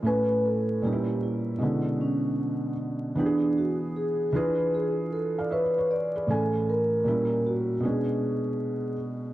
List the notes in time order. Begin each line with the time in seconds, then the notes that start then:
0.03 A2 A3 C#4
0.07 B4 G#5
0.45 A4
0.82 A#2 G3 C#4 G4
0.86 D#4
0.92 E4
1.23 E4
1.59 B2 D3 G#3 C#4 E4
2.01 C#4
3.15 E3 B3 D4 G4
3.26 G#4
3.58 F#4
3.96 G#4
4.32 E3 D4 F4 G#4 B4
4.74 G#4
5.13 A4
5.39 D5 F5
5.51 B4 C#5 E5
5.78 C#5
5.91 D5
6.16 G#4 B4
6.27 A2 E3 C#4 A4 G#5
6.69 A#4
7.04 A#2 G3 C#4 E4
7.47 F#4
7.80 B2 G#3 C#4
7.85 D4 G#4